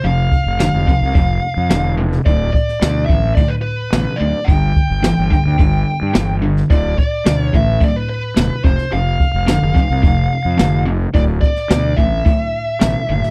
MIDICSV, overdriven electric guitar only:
0, 0, Header, 1, 2, 480
1, 0, Start_track
1, 0, Tempo, 555556
1, 36, Time_signature, 4, 2, 24, 8
1, 11496, End_track
2, 0, Start_track
2, 0, Title_t, "Overdriven electric guitar"
2, 0, Program_c, 0, 29
2, 34, Note_on_c, 0, 41, 84
2, 36, Note_on_c, 0, 48, 83
2, 467, Note_off_c, 0, 41, 0
2, 468, Note_off_c, 0, 48, 0
2, 512, Note_on_c, 0, 50, 88
2, 513, Note_on_c, 0, 41, 68
2, 730, Note_off_c, 0, 50, 0
2, 731, Note_off_c, 0, 41, 0
2, 755, Note_on_c, 0, 41, 77
2, 759, Note_on_c, 0, 48, 78
2, 972, Note_off_c, 0, 41, 0
2, 974, Note_off_c, 0, 48, 0
2, 996, Note_on_c, 0, 41, 77
2, 1002, Note_on_c, 0, 48, 76
2, 1428, Note_off_c, 0, 41, 0
2, 1432, Note_off_c, 0, 48, 0
2, 1465, Note_on_c, 0, 41, 83
2, 1470, Note_on_c, 0, 50, 89
2, 1687, Note_off_c, 0, 41, 0
2, 1689, Note_off_c, 0, 50, 0
2, 1708, Note_on_c, 0, 41, 54
2, 1708, Note_on_c, 0, 48, 66
2, 1928, Note_off_c, 0, 48, 0
2, 1929, Note_off_c, 0, 41, 0
2, 1951, Note_on_c, 0, 38, 79
2, 1953, Note_on_c, 0, 45, 88
2, 2386, Note_off_c, 0, 38, 0
2, 2387, Note_off_c, 0, 45, 0
2, 2432, Note_on_c, 0, 38, 71
2, 2435, Note_on_c, 0, 47, 88
2, 2650, Note_off_c, 0, 38, 0
2, 2652, Note_off_c, 0, 47, 0
2, 2668, Note_on_c, 0, 38, 65
2, 2675, Note_on_c, 0, 45, 76
2, 2889, Note_off_c, 0, 38, 0
2, 2892, Note_off_c, 0, 45, 0
2, 2913, Note_on_c, 0, 38, 84
2, 2914, Note_on_c, 0, 45, 93
2, 3347, Note_off_c, 0, 38, 0
2, 3348, Note_off_c, 0, 45, 0
2, 3393, Note_on_c, 0, 38, 89
2, 3394, Note_on_c, 0, 47, 88
2, 3611, Note_off_c, 0, 38, 0
2, 3612, Note_off_c, 0, 47, 0
2, 3626, Note_on_c, 0, 38, 67
2, 3630, Note_on_c, 0, 45, 74
2, 3848, Note_off_c, 0, 38, 0
2, 3850, Note_off_c, 0, 45, 0
2, 3870, Note_on_c, 0, 43, 84
2, 3874, Note_on_c, 0, 50, 93
2, 4305, Note_off_c, 0, 43, 0
2, 4308, Note_off_c, 0, 50, 0
2, 4341, Note_on_c, 0, 43, 81
2, 4345, Note_on_c, 0, 52, 80
2, 4565, Note_off_c, 0, 43, 0
2, 4567, Note_off_c, 0, 52, 0
2, 4583, Note_on_c, 0, 43, 64
2, 4585, Note_on_c, 0, 50, 69
2, 4806, Note_off_c, 0, 43, 0
2, 4807, Note_off_c, 0, 50, 0
2, 4828, Note_on_c, 0, 43, 75
2, 4829, Note_on_c, 0, 50, 93
2, 5265, Note_off_c, 0, 43, 0
2, 5265, Note_off_c, 0, 50, 0
2, 5301, Note_on_c, 0, 43, 78
2, 5309, Note_on_c, 0, 52, 94
2, 5525, Note_off_c, 0, 43, 0
2, 5529, Note_off_c, 0, 52, 0
2, 5546, Note_on_c, 0, 43, 64
2, 5549, Note_on_c, 0, 50, 73
2, 5767, Note_off_c, 0, 43, 0
2, 5769, Note_off_c, 0, 50, 0
2, 5790, Note_on_c, 0, 38, 79
2, 5794, Note_on_c, 0, 45, 85
2, 6226, Note_off_c, 0, 38, 0
2, 6227, Note_off_c, 0, 45, 0
2, 6270, Note_on_c, 0, 38, 75
2, 6274, Note_on_c, 0, 47, 87
2, 6490, Note_off_c, 0, 38, 0
2, 6492, Note_off_c, 0, 47, 0
2, 6507, Note_on_c, 0, 38, 74
2, 6512, Note_on_c, 0, 45, 76
2, 6728, Note_off_c, 0, 38, 0
2, 6730, Note_off_c, 0, 45, 0
2, 6742, Note_on_c, 0, 38, 83
2, 6750, Note_on_c, 0, 45, 91
2, 7181, Note_off_c, 0, 38, 0
2, 7185, Note_off_c, 0, 45, 0
2, 7225, Note_on_c, 0, 38, 82
2, 7227, Note_on_c, 0, 47, 91
2, 7447, Note_off_c, 0, 38, 0
2, 7448, Note_off_c, 0, 47, 0
2, 7465, Note_on_c, 0, 41, 62
2, 7468, Note_on_c, 0, 48, 66
2, 7687, Note_off_c, 0, 41, 0
2, 7688, Note_off_c, 0, 48, 0
2, 7702, Note_on_c, 0, 41, 78
2, 7708, Note_on_c, 0, 48, 84
2, 8141, Note_off_c, 0, 41, 0
2, 8144, Note_off_c, 0, 48, 0
2, 8177, Note_on_c, 0, 41, 89
2, 8186, Note_on_c, 0, 50, 96
2, 8403, Note_off_c, 0, 41, 0
2, 8407, Note_off_c, 0, 50, 0
2, 8413, Note_on_c, 0, 41, 67
2, 8420, Note_on_c, 0, 48, 69
2, 8641, Note_off_c, 0, 41, 0
2, 8644, Note_off_c, 0, 48, 0
2, 8659, Note_on_c, 0, 41, 78
2, 8662, Note_on_c, 0, 48, 76
2, 9099, Note_off_c, 0, 41, 0
2, 9101, Note_off_c, 0, 48, 0
2, 9137, Note_on_c, 0, 41, 81
2, 9141, Note_on_c, 0, 50, 84
2, 9362, Note_off_c, 0, 41, 0
2, 9364, Note_off_c, 0, 50, 0
2, 9380, Note_on_c, 0, 41, 64
2, 9386, Note_on_c, 0, 48, 72
2, 9604, Note_off_c, 0, 41, 0
2, 9607, Note_off_c, 0, 48, 0
2, 9621, Note_on_c, 0, 38, 87
2, 9627, Note_on_c, 0, 45, 92
2, 10060, Note_off_c, 0, 38, 0
2, 10063, Note_off_c, 0, 45, 0
2, 10105, Note_on_c, 0, 38, 82
2, 10109, Note_on_c, 0, 47, 79
2, 10326, Note_off_c, 0, 38, 0
2, 10328, Note_off_c, 0, 47, 0
2, 10344, Note_on_c, 0, 38, 72
2, 10349, Note_on_c, 0, 45, 90
2, 10566, Note_off_c, 0, 38, 0
2, 10568, Note_off_c, 0, 45, 0
2, 10583, Note_on_c, 0, 38, 79
2, 10584, Note_on_c, 0, 45, 95
2, 11021, Note_off_c, 0, 38, 0
2, 11021, Note_off_c, 0, 45, 0
2, 11060, Note_on_c, 0, 38, 75
2, 11067, Note_on_c, 0, 47, 80
2, 11283, Note_off_c, 0, 38, 0
2, 11287, Note_off_c, 0, 47, 0
2, 11310, Note_on_c, 0, 38, 66
2, 11316, Note_on_c, 0, 45, 72
2, 11496, Note_off_c, 0, 38, 0
2, 11496, Note_off_c, 0, 45, 0
2, 11496, End_track
0, 0, End_of_file